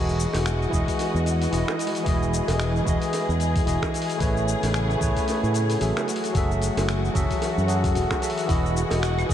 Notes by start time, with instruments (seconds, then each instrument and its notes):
Already playing: fingered electric bass E1, tine electric piano E3 E4 F#4 G#4 D#5, string section E3 G#3 F#4 D#5
0.09 shaker
0.20 shaker
0.33 fingered electric bass E1, open hi-hat, high bongo, shaker
0.46 finger snap, open hi-hat, shaker
0.62 shaker
0.70 fingered electric bass E1, tine electric piano E3 E4 F#4 G#4, kick, shaker
0.75 tine electric piano D#5
0.88 kick, open hi-hat, shaker
0.99 open hi-hat, high bongo, shaker
1.14 fingered electric bass E2, shaker
1.26 open hi-hat, shaker
1.42 open hi-hat, shaker
1.51 fingered electric bass E1, tine electric piano E3 E4 F#4 G#4 D#5, open hi-hat, shaker
1.68 finger snap, high bongo, shaker
1.79 open hi-hat, shaker
1.87 open hi-hat
1.95 open hi-hat, shaker
2.03 fingered electric bass E1, tine electric piano E3 E4 F#4 G#4, string section G#4, kick, open hi-hat, shaker
2.09 tine electric piano D#5
2.23 shaker
2.34 shaker
2.48 fingered electric bass E1, open hi-hat, high bongo, shaker
2.60 finger snap, open hi-hat, shaker
2.76 shaker
2.84 fingered electric bass E1, tine electric piano E3 E4 F#4 G#4, kick, shaker
2.89 tine electric piano D#5
3.02 open hi-hat, shaker
3.13 open hi-hat, high bongo, shaker
3.29 fingered electric bass E2, shaker
3.40 open hi-hat, shaker
3.56 kick, open hi-hat, shaker
3.65 fingered electric bass E1, tine electric piano E3 E4 F#4 G#4 D#5, open hi-hat, shaker
3.83 finger snap, kick, high bongo, shaker
3.94 open hi-hat, shaker
4.02 open hi-hat
4.10 open hi-hat, shaker
4.17 fingered electric bass A1, string section C#3 A3 B3, tine electric piano A3 E4 G#4, kick, open hi-hat
4.21 tine electric piano B4 C#5, shaker
4.37 shaker
4.48 shaker
4.63 fingered electric bass A1, open hi-hat, high bongo, shaker
4.74 finger snap, open hi-hat, shaker
4.91 shaker
4.98 fingered electric bass A1, tine electric piano A3 E4 G#4, kick, shaker
5.02 tine electric piano B4 C#5
5.17 kick, open hi-hat, shaker
5.28 open hi-hat, high bongo, shaker
5.43 fingered electric bass A2, shaker
5.54 open hi-hat, shaker
5.70 open hi-hat, shaker
5.79 fingered electric bass A1, tine electric piano F#3 F#4 G#4 A4 E5, open hi-hat, shaker
5.97 finger snap, high bongo, shaker
6.07 string section E3 F#4, open hi-hat, shaker
6.16 open hi-hat
6.24 open hi-hat, shaker
6.32 fingered electric bass F#1, tine electric piano F#3 F#4 G#4, kick, open hi-hat, shaker
6.36 tine electric piano A4 E5
6.51 shaker
6.62 open hi-hat, shaker
6.77 fingered electric bass F#1, open hi-hat, high bongo, shaker
6.89 finger snap, open hi-hat, shaker
7.05 shaker
7.14 fingered electric bass F#1, tine electric piano F#3 F#4 G#4 A4 E5, kick, open hi-hat, shaker
7.31 kick, open hi-hat, shaker
7.42 open hi-hat, high bongo, shaker
7.58 fingered electric bass F#2, shaker
7.67 tine electric piano F#3 F#4 G#4 A4 F#5, open hi-hat, shaker
7.84 kick, open hi-hat, shaker
7.95 fingered electric bass E1, open hi-hat, shaker
8.11 finger snap, kick, high bongo, shaker
8.21 tine electric piano F#3 F#4 G#4 A4 E5, open hi-hat, shaker
8.30 open hi-hat
8.38 open hi-hat, shaker
8.46 fingered electric bass E1, tine electric piano E3 E4 F#4, clean electric guitar E4, string section D#5, kick, open hi-hat, shaker
8.50 tine electric piano G#4 D#5
8.66 shaker
8.77 shaker
8.91 fingered electric bass E1, open hi-hat, high bongo, shaker
9.02 clean electric guitar F#4, finger snap, open hi-hat, shaker
9.19 claves, shaker
9.26 fingered electric bass E1, tine electric piano E3 F#4, clean electric guitar G#4, kick
9.30 tine electric piano G#4, shaker